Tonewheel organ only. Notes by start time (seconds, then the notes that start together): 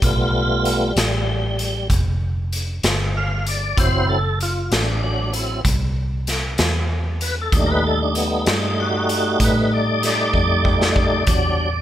0.03 G3 A3 B3 F4
3.17 F5
3.48 D5
3.77 F#3 C4 E4 C5
4.09 A4
4.43 F4
4.72 D4
5.03 F#3 D4
5.32 F#3 C4 E4
7.22 B4
7.41 A4
7.53 G3 A3 D4 D#4
7.66 A#4
7.71 B4
7.87 A4
8.02 D4
8.16 B3
8.80 F#4
9.44 B4
9.73 D5
10.06 D5
11.27 F#3 G3 D4